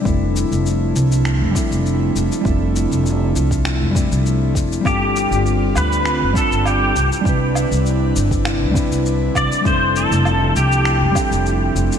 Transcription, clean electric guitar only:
X:1
M:4/4
L:1/8
Q:"Swing 16ths" 1/4=100
K:Flyd
V:1 name="Clean electric guitar"
[G,CDEA]4- [G,CDEA] [G,CDEA]3 | [G,CDEA]4- [G,CDEA] [G,CDEA]3 | [G,CDFA]4- [G,CDFA] [G,CDFA]2 z | [G,CDEB]4- [G,CDEB] [G,CDEB]3 |
[G,CDEA]4- [G,CDEA] [G,CDEA]3 |]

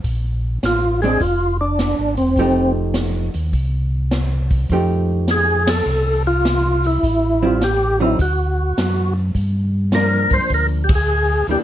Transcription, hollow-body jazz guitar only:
X:1
M:4/4
L:1/8
Q:"Swing" 1/4=103
K:Fmix
V:1 name="Hollow-body jazz guitar"
z3 [_A,CD] z4 | [F,A,EG]3 z4 z | [F,A,EG]3 z4 z | z [G,C=E] z [D,_G,C_E] z4 |
z2 [F,B,D]3 z2 [=E,B,D] |]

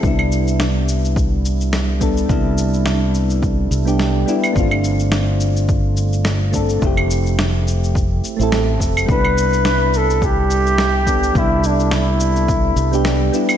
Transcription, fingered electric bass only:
X:1
M:4/4
L:1/16
Q:"Swing 16ths" 1/4=106
K:C
V:1 name="Fingered electric bass" clef=bass
C,,16 | C,,8- C,,2 C,,4 z2 | G,,,16 | F,,,8- F,,,2 z A,,,3 F,,,2 |
C,,16 | C,,8- C,,2 C,,4 z2 |]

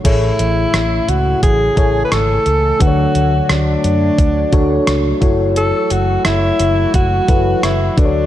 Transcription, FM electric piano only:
X:1
M:4/4
L:1/8
Q:1/4=87
K:A
V:1 name="FM electric piano"
[A,,EGAc]3 z2 [EAcg]2 z | [D,DFABc]3 z2 [DFAc]2 [EFAc]- | [EFAc]2 z3 [EFAB]2 [D,DFABc] |]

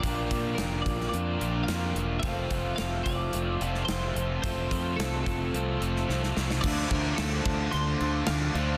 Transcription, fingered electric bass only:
X:1
M:4/4
L:1/8
Q:1/4=109
K:Dm
V:1 name="Fingered electric bass" clef=bass
B,,, B,, F,,, B,,, F,, B,,, F,, E,,, | F,,, F,,, F,,, F,,, F,,, F,,, F,,, F,,, | F,,, F,, C,, F,,, C,, F,,, C,, C,, | D,, D,, D,, D,, D,, D,, D,, D,, |]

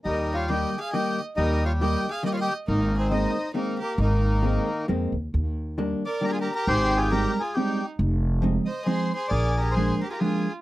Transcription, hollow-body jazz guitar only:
X:1
M:3/4
L:1/8
Q:"Swing" 1/4=136
K:Ab
V:1 name="Hollow-body jazz guitar"
z2 [E,G,B,E] z [E,G,B,E] z | z2 [E,G,B,E] z [E,G,B,E] z | z2 [E,A,B,C] z [E,A,B,C] z | z2 [E,A,B,C] z [E,A,B,C] z |
[K:Eb] z2 [E,G,B,D] z [E,G,B,D] z | z2 [G,A,CE] z [G,A,CE] z | z2 [F,A,CE] z [F,A,CE] z | z2 [F,A,B,D] z [F,A,B,D] z |]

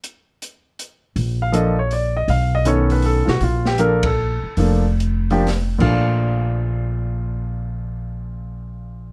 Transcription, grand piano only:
X:1
M:3/4
L:1/8
Q:"Swing" 1/4=155
K:Bb
V:1 name="Grand piano"
z6 | z f e _d =d e | f ^d ^c =B A [F^F] | F G B A3 |
z4 z F- | F6- | F6 |]
V:2 name="Grand piano"
z6 | z2 [F,B,DA] z3 | z2 [^D,=B,^CA]3 z | z2 [F,B,DA] z3 |
[F,B,DA] z2 [F,B,DG] z [B,,F,A,D]- | [B,,F,A,D]6- | [B,,F,A,D]6 |]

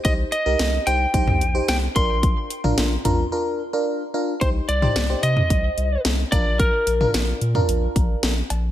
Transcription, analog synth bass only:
X:1
M:4/4
L:1/16
Q:1/4=110
K:Cm
V:1 name="Analog synth bass" clef=bass
C,,2 z C,, C,,2 C,,2 C,,2 B,,,2 C,,2 B,,,2- | B,,,2 z B,,, B,,,2 B,,,2 z8 | C,,2 C,,2 C,,2 C,2 C,,2 C,,2 C,,2 B,,,2- | B,,,2 B,,,2 B,,,2 B,,2 B,,,2 B,,,2 B,,,2 B,,,2 |]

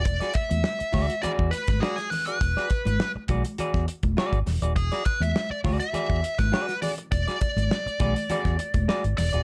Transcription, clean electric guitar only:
X:1
M:4/4
L:1/16
Q:1/4=102
K:Emix
V:1 name="Clean electric guitar"
z [FGd] z4 [FGd] z [FGd]2 z2 [FGd] z2 [FGd] | z [FGd] z4 [FGd] z [FGd]2 z2 [FGd] z2 [FGd] | z [FGd] z4 [FGd] z [FGd]2 z2 [FGd] z [FGd] z | z [FGd] z4 [FGd] z [FGd]2 z2 [FGd] z2 [FGd] |]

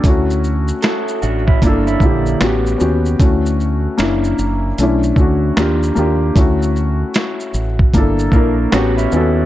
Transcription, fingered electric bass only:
X:1
M:4/4
L:1/8
Q:"Swing 16ths" 1/4=76
K:D
V:1 name="Fingered electric bass" clef=bass
D,,2 z A,,, G,,, _B,,, A,,, _E,, | D,,2 F,,, F,,, B,,, D,, _E,, E,, | D,,2 z A,,, G,,, _B,,, A,,, _E,, |]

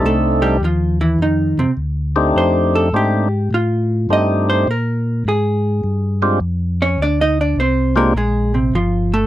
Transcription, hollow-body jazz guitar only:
X:1
M:4/4
L:1/8
Q:"Swing" 1/4=103
K:Fmix
V:1 name="Hollow-body jazz guitar"
[A,A] [G,G] [F,F] [=E,=E] [_E,_E] [C,C] z2 | c A G2 F2 e c | B2 _A3 z2 [_D_d] | (3[Dd] [Ee] [Dd] [Cc] [B,B] [_A,_A] [C,C] [F,F] [=A,=A] |]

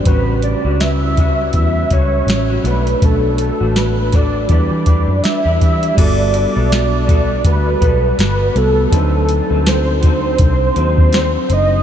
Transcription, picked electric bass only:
X:1
M:4/4
L:1/16
Q:"Swing 16ths" 1/4=81
K:G
V:1 name="Picked electric bass" clef=bass
A,,,3 ^C,,4- C,, E,,2 C,,2 A,,,2 B,,,2 | B,,,3 A,,,4- A,,, E,, E, E,, F,, z E,, E,2 | G,,,3 B,,,4- B,,, D,,2 B,,,2 G,,,2 C,,2 | D,,3 D,,4- D,, C,,2 _E,,4 F,,,2 |]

